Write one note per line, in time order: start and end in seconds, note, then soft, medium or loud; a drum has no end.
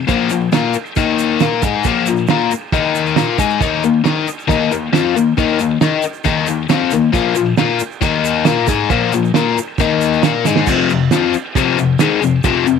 0.08 0.29 A#2 loud
0.08 0.30 F3 loud
0.08 0.30 A#3 medium
0.08 kick loud
0.08 crash medium
0.08 shaker medium
0.30 0.49 A#2 medium
0.30 0.49 F3 medium
0.30 shaker medium
0.52 0.74 A#3 medium
0.52 0.74 F4 medium
0.52 0.75 A#4 loud
0.52 snare loud
0.52 crash medium
0.52 shaker medium
0.74 muted overdriven electric guitar stroke medium
0.74 shaker loud
0.86 shaker soft
0.96 1.40 D#3 medium
0.96 1.39 A#3 loud
0.96 1.40 D#4 loud
0.96 kick loud
0.96 crash medium
0.96 shaker medium
1.19 shaker loud
1.40 1.61 A#3 medium
1.40 1.62 F4 loud
1.40 1.63 A#4 loud
1.40 snare loud
1.40 crash medium
1.40 shaker medium
1.62 1.84 G#3 loud
1.62 1.84 D#4 medium
1.62 1.85 G#4 loud
1.62 kick loud
1.62 shaker loud
1.84 2.06 A#2 loud
1.84 2.07 F3 medium
1.84 2.07 A#3 loud
1.84 kick loud
1.84 crash medium
1.84 shaker medium
2.06 2.25 A#2 medium
2.06 2.25 F3 medium
2.06 shaker loud
2.17 shaker soft
2.27 2.51 A#3 medium
2.27 2.51 F4 medium
2.27 2.51 A#4 loud
2.27 snare loud
2.27 crash medium
2.27 shaker medium
2.51 muted overdriven electric guitar stroke medium
2.51 shaker loud
2.72 3.16 D#3 loud
2.72 3.16 A#3 loud
2.72 3.17 D#4 loud
2.72 kick loud
2.72 crash medium
2.72 shaker medium
2.95 shaker loud
3.06 shaker soft
3.16 3.38 A#3 medium
3.16 3.39 F4 loud
3.16 3.39 A#4 loud
3.16 snare loud
3.16 crash medium
3.16 shaker medium
3.38 3.60 G#3 loud
3.38 3.60 D#4 medium
3.38 3.61 G#4 loud
3.38 kick loud
3.38 shaker loud
3.50 shaker soft
3.60 3.82 D#3 medium
3.60 3.83 A#3 loud
3.60 3.83 D#4 loud
3.60 kick loud
3.60 crash medium
3.60 shaker medium
3.84 4.01 D#3 medium
3.84 4.01 A#3 medium
3.84 shaker medium
4.04 4.26 D#4 medium
4.04 4.26 A#4 medium
4.04 4.26 D#5 loud
4.04 snare loud
4.04 crash medium
4.04 shaker medium
4.27 muted overdriven electric guitar stroke medium
4.27 shaker medium
4.39 shaker soft
4.48 4.70 D#3 loud
4.48 4.70 A#3 loud
4.48 4.70 D#4 loud
4.48 kick loud
4.48 crash medium
4.48 shaker medium
4.72 4.89 D#3 medium
4.72 4.89 A#3 medium
4.72 shaker medium
4.93 5.14 F3 loud
4.93 5.15 C4 loud
4.93 5.15 F4 loud
4.93 snare loud
4.93 crash medium
4.93 shaker medium
5.16 5.33 D#3 medium
5.16 5.33 A#3 medium
5.16 shaker medium
5.38 5.59 D#3 medium
5.38 5.59 A#3 loud
5.38 5.60 D#4 loud
5.38 kick loud
5.38 crash medium
5.38 shaker medium
5.59 5.78 D#3 medium
5.59 5.78 A#3 medium
5.59 shaker medium
5.81 6.03 D#4 medium
5.81 6.03 A#4 medium
5.81 6.03 D#5 loud
5.81 snare loud
5.81 crash medium
5.81 shaker medium
6.02 muted overdriven electric guitar stroke medium
6.02 shaker medium
6.13 shaker soft
6.24 6.46 D#3 loud
6.24 6.47 A#3 loud
6.24 6.47 D#4 loud
6.24 kick loud
6.24 crash medium
6.24 shaker medium
6.47 6.65 D#3 medium
6.47 6.65 A#3 medium
6.47 shaker medium
6.69 6.91 F3 loud
6.69 6.91 C4 loud
6.69 6.91 F4 loud
6.69 snare loud
6.69 crash medium
6.69 shaker medium
6.91 7.10 D#3 medium
6.91 7.10 A#3 medium
6.91 shaker loud
7.13 7.35 A#2 loud
7.13 7.35 F3 loud
7.13 7.36 A#3 loud
7.13 kick loud
7.13 crash medium
7.13 shaker medium
7.35 7.54 A#2 medium
7.35 7.54 F3 medium
7.35 shaker loud
7.57 7.79 A#3 medium
7.57 7.80 F4 loud
7.57 7.80 A#4 loud
7.57 snare loud
7.57 crash medium
7.57 shaker medium
7.80 muted overdriven electric guitar stroke medium
7.80 shaker loud
7.92 shaker soft
8.01 8.45 D#3 loud
8.01 8.44 A#3 loud
8.01 8.46 D#4 loud
8.01 kick loud
8.01 crash medium
8.01 shaker medium
8.25 shaker loud
8.45 8.67 A#3 loud
8.45 8.68 F4 loud
8.45 8.68 A#4 loud
8.45 snare loud
8.45 crash medium
8.45 shaker medium
8.67 8.90 G#3 medium
8.67 8.90 D#4 loud
8.67 8.90 G#4 loud
8.67 kick loud
8.67 shaker loud
8.89 9.11 A#2 loud
8.89 9.12 F3 loud
8.89 9.12 A#3 loud
8.89 kick loud
8.89 crash medium
8.89 shaker medium
9.13 9.30 A#2 medium
9.13 9.31 F3 medium
9.13 shaker loud
9.25 shaker soft
9.34 9.56 A#3 medium
9.34 9.56 F4 loud
9.34 9.57 A#4 medium
9.34 snare loud
9.34 crash medium
9.34 shaker medium
9.58 muted overdriven electric guitar stroke medium
9.58 shaker loud
9.78 10.23 D#3 medium
9.78 10.23 A#3 loud
9.78 10.24 D#4 loud
9.78 kick loud
9.78 crash medium
9.78 shaker medium
10.01 shaker loud
10.13 shaker soft
10.23 10.45 A#3 loud
10.23 10.45 F4 loud
10.23 10.46 A#4 loud
10.23 snare loud
10.23 crash medium
10.23 shaker medium
10.45 10.67 G#3 medium
10.45 10.67 D#4 loud
10.45 10.68 G#4 loud
10.45 snare medium
10.45 shaker loud
10.56 snare loud
10.67 10.89 F2 medium
10.67 10.90 C3 loud
10.67 10.90 F3 loud
10.67 kick loud
10.67 crash loud
10.67 crash medium
10.67 shaker medium
10.90 11.08 F2 medium
10.90 11.08 C3 medium
10.90 shaker medium
11.11 11.33 F3 loud
11.11 11.34 C4 medium
11.11 11.34 F4 loud
11.11 snare loud
11.11 crash medium
11.11 shaker medium
11.34 muted overdriven electric guitar stroke medium
11.34 shaker medium
11.55 11.78 F2 loud
11.55 11.78 C3 loud
11.55 11.78 F3 loud
11.55 kick loud
11.55 crash medium
11.55 shaker medium
11.78 11.96 F2 medium
11.78 11.96 C3 medium
11.78 shaker medium
11.99 12.21 G#2 medium
11.99 12.21 D#3 loud
11.99 12.22 G#3 loud
11.99 snare loud
11.99 crash medium
11.99 shaker loud
12.21 12.40 F2 medium
12.21 12.40 C3 medium
12.21 shaker medium
12.44 12.65 F2 loud
12.44 12.65 C3 loud
12.44 12.66 F3 loud
12.44 kick loud
12.44 crash medium
12.44 shaker medium
12.66 12.79 F2 medium
12.66 12.79 C3 medium
12.66 shaker medium